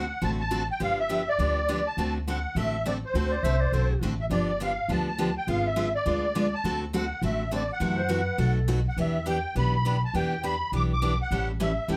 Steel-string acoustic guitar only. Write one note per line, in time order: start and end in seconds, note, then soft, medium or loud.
0.22 0.41 D3 medium
0.22 0.41 A3 medium
0.22 0.41 C4 medium
0.22 0.42 F#4 medium
0.22 0.42 A4 medium
0.51 0.62 D3 medium
0.51 0.62 A3 medium
0.51 0.62 C4 medium
0.51 0.62 F#4 medium
0.51 0.62 A4 medium
0.80 1.00 D3 medium
0.80 1.00 F3 medium
0.80 1.00 B3 medium
0.80 1.00 D4 medium
0.80 1.00 G4 medium
1.09 1.20 D3 medium
1.09 1.21 F3 medium
1.09 1.21 B3 medium
1.09 1.21 D4 medium
1.09 1.21 G4 medium
1.39 1.58 D3 medium
1.39 1.58 F3 medium
1.39 1.59 B3 medium
1.39 1.59 D4 medium
1.39 1.59 G4 medium
1.69 1.79 D3 medium
1.69 1.79 F3 medium
1.69 1.79 B3 medium
1.69 1.79 D4 medium
1.69 1.79 G4 medium
1.98 2.17 D3 medium
1.98 2.17 A3 medium
1.98 2.17 C4 medium
1.98 2.17 F#4 medium
1.98 2.18 A4 medium
2.28 2.38 D3 medium
2.28 2.38 A3 medium
2.28 2.38 C4 medium
2.28 2.38 F#4 medium
2.28 2.38 A4 medium
2.56 2.75 D3 medium
2.56 2.75 A3 medium
2.56 2.76 C4 medium
2.56 2.76 F#4 medium
2.56 2.76 A4 medium
2.86 2.96 D3 medium
2.86 2.96 A3 medium
2.86 2.96 C4 medium
2.86 2.96 F#4 medium
2.86 2.97 A4 medium
3.15 3.34 D3 medium
3.15 3.34 A3 medium
3.15 3.34 C4 medium
3.15 3.34 F#4 medium
3.15 3.34 A4 medium
3.44 3.55 D3 medium
3.44 3.55 A3 medium
3.44 3.55 C4 medium
3.44 3.55 F#4 medium
3.44 3.55 A4 medium
3.73 3.92 D3 medium
3.73 3.92 A3 medium
3.73 3.92 C4 medium
3.73 3.92 F#4 medium
3.73 3.93 A4 medium
4.03 4.13 D3 medium
4.03 4.13 A3 medium
4.03 4.13 C4 medium
4.03 4.13 F#4 medium
4.03 4.13 A4 medium
4.30 4.50 D3 medium
4.30 4.50 F3 medium
4.30 4.50 B3 medium
4.30 4.50 D4 medium
4.30 4.50 G4 medium
4.60 4.71 D3 medium
4.60 4.71 F3 medium
4.60 4.71 B3 medium
4.60 4.71 D4 medium
4.60 4.72 G4 medium
4.89 5.08 D3 medium
4.89 5.09 F3 medium
4.89 5.09 B3 medium
4.89 5.09 D4 medium
4.89 5.09 G4 medium
5.18 5.29 D3 medium
5.18 5.29 F3 medium
5.18 5.29 B3 medium
5.18 5.29 D4 medium
5.18 5.29 G4 medium
5.48 5.67 D3 medium
5.48 5.67 G#3 medium
5.48 5.67 B3 medium
5.48 5.67 F4 medium
5.48 5.67 G#4 medium
5.76 5.87 D3 medium
5.76 5.87 G#3 medium
5.76 5.87 B3 medium
5.76 5.87 F4 medium
5.76 5.87 G#4 medium
6.06 6.25 D3 medium
6.06 6.25 G#3 medium
6.06 6.25 B3 medium
6.06 6.25 F4 medium
6.06 6.25 G#4 medium
6.35 6.46 D3 medium
6.35 6.46 G#3 medium
6.35 6.46 B3 medium
6.35 6.46 F4 medium
6.35 6.46 G#4 medium
6.64 6.84 D3 medium
6.64 6.84 A3 medium
6.64 6.84 C4 medium
6.64 6.84 F#4 medium
6.64 6.84 A4 medium
6.93 7.04 D3 medium
6.93 7.04 A3 medium
6.93 7.04 C4 medium
6.93 7.05 F#4 medium
6.93 7.05 A4 medium
7.22 7.42 D3 medium
7.22 7.42 A3 medium
7.22 7.42 C4 medium
7.22 7.42 F#4 medium
7.22 7.42 A4 medium
7.51 7.62 D3 medium
7.51 7.62 A3 medium
7.51 7.63 C4 medium
7.51 7.62 F#4 medium
7.51 7.63 A4 medium
7.80 8.00 C3 medium
7.80 8.00 E3 medium
7.80 8.00 A3 medium
7.80 8.00 E4 medium
7.80 8.00 F#4 medium
8.09 8.20 C3 medium
8.09 8.20 E3 medium
8.09 8.20 A3 medium
8.09 8.20 E4 medium
8.09 8.20 F#4 medium
8.38 8.58 B2 medium
8.38 8.58 F#3 medium
8.38 8.58 A3 medium
8.38 8.58 D#4 medium
8.38 8.58 F#4 medium
8.68 8.79 B2 medium
8.68 8.79 F#3 medium
8.68 8.79 A3 medium
8.68 8.79 D#4 medium
8.68 8.79 F#4 medium
8.97 9.17 E3 medium
8.97 9.17 B3 medium
8.97 9.17 D4 medium
8.97 9.17 G4 medium
9.26 9.37 E3 medium
9.26 9.37 B3 medium
9.26 9.37 D4 medium
9.26 9.37 G4 medium
9.56 9.75 E3 medium
9.56 9.75 B3 medium
9.56 9.75 D4 medium
9.56 9.75 G4 medium
9.85 9.96 E3 medium
9.85 9.96 B3 medium
9.85 9.96 D4 medium
9.85 9.96 G4 medium
10.14 10.33 E3 medium
10.14 10.34 B3 medium
10.14 10.34 D4 medium
10.14 10.34 G4 medium
10.43 10.54 E3 medium
10.43 10.54 B3 medium
10.43 10.54 D4 medium
10.43 10.54 G4 medium
10.73 10.92 E3 medium
10.73 10.92 B3 medium
10.73 10.92 D4 medium
10.73 10.92 G4 medium
11.02 11.12 E3 medium
11.02 11.12 B3 medium
11.02 11.13 D4 medium
11.02 11.13 G4 medium
11.31 11.50 E3 medium
11.31 11.50 G3 medium
11.31 11.50 C#4 medium
11.31 11.51 E4 medium
11.31 11.51 A4 medium
11.60 11.70 E3 medium
11.60 11.70 G3 medium
11.60 11.71 C#4 medium
11.60 11.71 E4 medium
11.60 11.71 A4 medium
11.88 11.97 E3 medium
11.88 11.97 G3 medium
11.88 11.97 C#4 medium
11.88 11.97 E4 medium
11.88 11.97 A4 medium